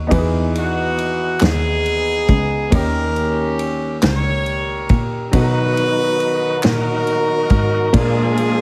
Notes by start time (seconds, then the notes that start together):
0.07 E3 B3 D#4
0.11 E2 F#4 B4, kick, ride
0.18 G#4
0.55 B3 D#4 F#4, ride
0.98 ride
1.41 D#2 B3 D#4 G#4, snare, clap, ride
1.86 ride
2.28 C#2, kick, ride
2.70 D#2 D#3 A#3 C#4 D#4 G4 A#4, kick, ride
2.74 G4 A#4
3.16 ride
3.59 ride
4.02 C#2 G4 A#4 C#5, snare, clap, ride
4.46 ride
4.89 A#2, kick, ride
5.31 B2 D#3 F#3 D#4 F#4 B4, kick, ride
5.36 F#4 A4
5.44 A#5
5.77 ride
6.20 ride
6.63 A#2 D#4 F#4 A#4, snare, clap, ride
7.07 ride
7.50 G#2, kick, ride
7.92 A#2 F3 G#3 A#3 D4 F4 G4 G#4, kick, ride
7.97 G#4 A#4
8.37 ride